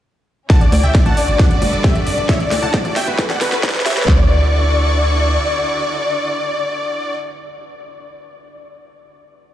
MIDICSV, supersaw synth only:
0, 0, Header, 1, 2, 480
1, 0, Start_track
1, 0, Key_signature, 2, "major"
1, 0, Tempo, 447761
1, 535, Time_signature, 4, 2, 24, 8
1, 10226, End_track
2, 0, Start_track
2, 0, Title_t, "Supersaw synth"
2, 0, Program_c, 0, 81
2, 535, Note_on_c, 0, 78, 73
2, 535, Note_on_c, 0, 81, 100
2, 641, Note_off_c, 0, 78, 0
2, 641, Note_off_c, 0, 81, 0
2, 654, Note_on_c, 0, 74, 65
2, 761, Note_off_c, 0, 74, 0
2, 775, Note_on_c, 0, 74, 66
2, 881, Note_off_c, 0, 74, 0
2, 895, Note_on_c, 0, 76, 76
2, 895, Note_on_c, 0, 79, 86
2, 1001, Note_off_c, 0, 76, 0
2, 1001, Note_off_c, 0, 79, 0
2, 1014, Note_on_c, 0, 74, 64
2, 1121, Note_off_c, 0, 74, 0
2, 1135, Note_on_c, 0, 78, 77
2, 1135, Note_on_c, 0, 81, 98
2, 1241, Note_off_c, 0, 78, 0
2, 1241, Note_off_c, 0, 81, 0
2, 1255, Note_on_c, 0, 74, 65
2, 1361, Note_off_c, 0, 74, 0
2, 1374, Note_on_c, 0, 74, 66
2, 1481, Note_off_c, 0, 74, 0
2, 1494, Note_on_c, 0, 74, 76
2, 1494, Note_on_c, 0, 78, 91
2, 1601, Note_off_c, 0, 74, 0
2, 1601, Note_off_c, 0, 78, 0
2, 1616, Note_on_c, 0, 74, 66
2, 1721, Note_off_c, 0, 74, 0
2, 1735, Note_on_c, 0, 74, 67
2, 1841, Note_off_c, 0, 74, 0
2, 1855, Note_on_c, 0, 74, 63
2, 1961, Note_off_c, 0, 74, 0
2, 1975, Note_on_c, 0, 67, 74
2, 1975, Note_on_c, 0, 76, 94
2, 2081, Note_off_c, 0, 67, 0
2, 2081, Note_off_c, 0, 76, 0
2, 2095, Note_on_c, 0, 74, 64
2, 2201, Note_off_c, 0, 74, 0
2, 2214, Note_on_c, 0, 74, 66
2, 2320, Note_off_c, 0, 74, 0
2, 2334, Note_on_c, 0, 74, 64
2, 2440, Note_off_c, 0, 74, 0
2, 2453, Note_on_c, 0, 76, 92
2, 2454, Note_on_c, 0, 73, 78
2, 2560, Note_off_c, 0, 73, 0
2, 2560, Note_off_c, 0, 76, 0
2, 2575, Note_on_c, 0, 74, 67
2, 2681, Note_off_c, 0, 74, 0
2, 2694, Note_on_c, 0, 74, 66
2, 2800, Note_off_c, 0, 74, 0
2, 2814, Note_on_c, 0, 78, 76
2, 2815, Note_on_c, 0, 81, 98
2, 2921, Note_off_c, 0, 78, 0
2, 2921, Note_off_c, 0, 81, 0
2, 2934, Note_on_c, 0, 74, 64
2, 3041, Note_off_c, 0, 74, 0
2, 3055, Note_on_c, 0, 74, 65
2, 3161, Note_off_c, 0, 74, 0
2, 3174, Note_on_c, 0, 76, 80
2, 3174, Note_on_c, 0, 79, 96
2, 3281, Note_off_c, 0, 76, 0
2, 3281, Note_off_c, 0, 79, 0
2, 3295, Note_on_c, 0, 71, 67
2, 3401, Note_off_c, 0, 71, 0
2, 3415, Note_on_c, 0, 71, 65
2, 3521, Note_off_c, 0, 71, 0
2, 3536, Note_on_c, 0, 74, 78
2, 3536, Note_on_c, 0, 78, 96
2, 3641, Note_off_c, 0, 74, 0
2, 3641, Note_off_c, 0, 78, 0
2, 3656, Note_on_c, 0, 71, 64
2, 3761, Note_off_c, 0, 71, 0
2, 3776, Note_on_c, 0, 71, 63
2, 3881, Note_off_c, 0, 71, 0
2, 3895, Note_on_c, 0, 74, 78
2, 3895, Note_on_c, 0, 78, 93
2, 4001, Note_off_c, 0, 74, 0
2, 4001, Note_off_c, 0, 78, 0
2, 4015, Note_on_c, 0, 71, 67
2, 4121, Note_off_c, 0, 71, 0
2, 4134, Note_on_c, 0, 67, 80
2, 4134, Note_on_c, 0, 76, 90
2, 4241, Note_off_c, 0, 67, 0
2, 4241, Note_off_c, 0, 76, 0
2, 4255, Note_on_c, 0, 71, 64
2, 4361, Note_off_c, 0, 71, 0
2, 10226, End_track
0, 0, End_of_file